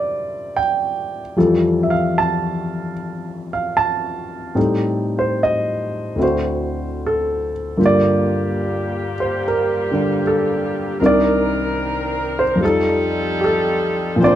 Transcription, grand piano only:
Already playing: C3 G3 D4 E4 A#4 C5 D5 E5
0.56 G5
1.36 F2 E3 F3 G3 A4
1.83 E5
1.90 F5
2.18 A5
3.53 F5
3.77 A5
4.55 A2 G3 C4 D#4 A4
5.19 C5
5.43 D#5
6.16 D2 D3 C4 E4
6.21 F#4 C5
7.06 A4
7.77 G2 D3 A#3 F4
7.86 D5
9.20 C5
9.48 A#4
9.91 D3 G3 D4 G4
10.27 A4
11.01 C2 C3 D4 D#4 A#4
11.06 D5
12.39 C5
12.55 F2 F3
12.60 G3 D#4
12.65 A4
13.41 G4 A4
14.16 A#2 F3
14.22 C4 D4 D5
14.27 C5

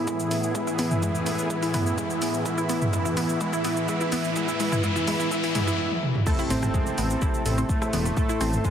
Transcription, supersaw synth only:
Already playing: E3 E4
0.55 E3 E4
1.50 E3 E4
2.45 E3 E4
2.93 E3 E4
3.41 E3 E4
3.88 E3 E4
4.36 E3 E4
4.60 E3 E4
4.83 E3 E4
5.07 E3 E4
5.31 E3 E4
5.55 E3 E4
6.27 C3 C4
7.69 A2 A3

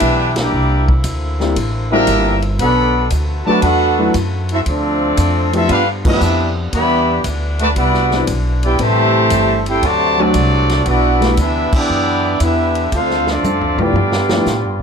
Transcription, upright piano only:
1.40 G3 A#3 C4 D4 E4
1.92 G3 A#3 C4 D4 F#4
3.46 F#3 A3 B3 D4 F#4
3.98 F#3 A3 B3 D4 E4
5.53 F3 A3 B3 D4 G4
6.05 F3 A3 B3 D4 E4
8.13 G3 B3 C4 D4 E4
8.79 G3 A3 B3 C4 E4
10.18 F#3 A3 C4 D4 F#4
11.20 G3 A3 B3 D4 E4
13.79 F3 A3 B3 D4 E4
14.31 F3 A3 B3 D4 E4

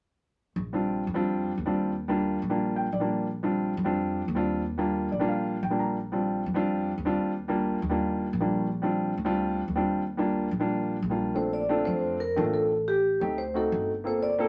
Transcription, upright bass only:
0.56 A#1
1.07 F2
1.58 D#2
2.42 A#1
2.92 A#1
3.77 F2
4.28 D#2
5.12 A#1
5.63 A#1
6.46 F2
6.98 D#2
7.82 D#2
8.33 A#1
9.17 D2
9.68 D#2
10.51 A#1
11.02 A#1
11.87 F2
12.37 A1
13.21 D2
13.72 G1

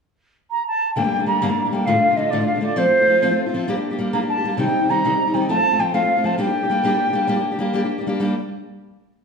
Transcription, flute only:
0.50 A#5
0.66 A5
0.94 G5
1.26 A#5
1.71 G5
1.85 F5
2.16 D#5
2.30 D5
2.46 F5
2.62 D5
2.77 C5
4.12 A#5
4.29 A5
4.58 G5
4.89 A#5
5.34 G5
5.48 A5
5.79 G5
5.93 F5
6.25 A5
6.38 G5

